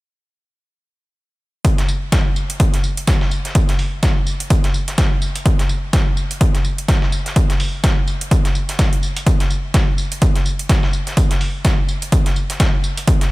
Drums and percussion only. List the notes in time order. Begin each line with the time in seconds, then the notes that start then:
1.65 kick, closed hi-hat, tambourine
1.78 snare, closed hi-hat
1.88 tambourine
2.12 kick, snare, closed hi-hat, tambourine
2.36 tambourine
2.50 closed hi-hat
2.60 kick, closed hi-hat, tambourine
2.74 snare, closed hi-hat
2.84 tambourine
2.97 closed hi-hat
3.07 kick, snare, closed hi-hat, tambourine
3.21 snare
3.31 tambourine
3.45 snare, closed hi-hat
3.55 kick, closed hi-hat, tambourine
3.69 snare, closed hi-hat
3.79 open hi-hat
4.03 kick, snare, closed hi-hat, tambourine
4.27 tambourine
4.40 closed hi-hat
4.50 kick, closed hi-hat, tambourine
4.64 snare, closed hi-hat
4.74 tambourine
4.88 snare, closed hi-hat
4.98 kick, snare, closed hi-hat, tambourine
5.22 tambourine
5.35 closed hi-hat
5.46 kick, closed hi-hat, tambourine
5.59 snare, closed hi-hat
5.69 tambourine
5.93 kick, snare, closed hi-hat, tambourine
6.17 tambourine
6.31 closed hi-hat
6.41 kick, closed hi-hat, tambourine
6.55 snare, closed hi-hat
6.65 tambourine
6.78 closed hi-hat
6.88 kick, snare, closed hi-hat, tambourine
7.02 snare
7.12 tambourine
7.26 snare, closed hi-hat
7.36 kick, closed hi-hat, tambourine
7.50 snare, closed hi-hat
7.60 open hi-hat
7.84 kick, snare, closed hi-hat, tambourine
8.07 tambourine
8.21 closed hi-hat
8.31 kick, closed hi-hat, tambourine
8.45 snare, closed hi-hat
8.55 tambourine
8.69 snare, closed hi-hat
8.79 kick, snare, closed hi-hat, tambourine
8.93 closed hi-hat
9.03 tambourine
9.16 closed hi-hat
9.26 kick, closed hi-hat, tambourine
9.40 snare, closed hi-hat
9.50 tambourine
9.74 kick, snare, closed hi-hat, tambourine
9.98 tambourine
10.12 closed hi-hat
10.22 kick, closed hi-hat, tambourine
10.36 snare, closed hi-hat
10.46 tambourine
10.59 closed hi-hat
10.69 kick, snare, closed hi-hat, tambourine
10.83 snare
10.93 tambourine
11.07 snare, closed hi-hat
11.17 kick, closed hi-hat, tambourine
11.31 snare, closed hi-hat
11.41 open hi-hat
11.65 kick, snare, closed hi-hat, tambourine
11.89 tambourine
12.02 closed hi-hat
12.12 kick, closed hi-hat, tambourine
12.26 snare, closed hi-hat
12.36 tambourine
12.50 snare, closed hi-hat
12.60 kick, snare, closed hi-hat, tambourine
12.84 tambourine
12.97 closed hi-hat
13.07 kick, closed hi-hat, tambourine
13.21 snare, closed hi-hat